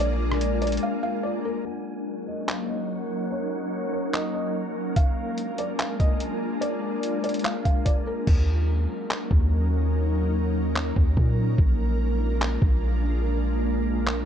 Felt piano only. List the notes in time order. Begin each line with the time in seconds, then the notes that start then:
0.00 D5
0.62 D5
0.83 F5
1.03 F5
1.23 D5
1.45 A#4
1.65 F#5
2.27 D#5
2.49 F5
2.68 D#5
3.31 C#5
3.93 C#5
4.14 D#5
4.34 D#5
4.96 F5
5.59 D5
5.79 F5
6.00 D#5
6.61 D5
7.24 D5
7.45 F5
7.65 F5
7.85 D5
8.07 A#4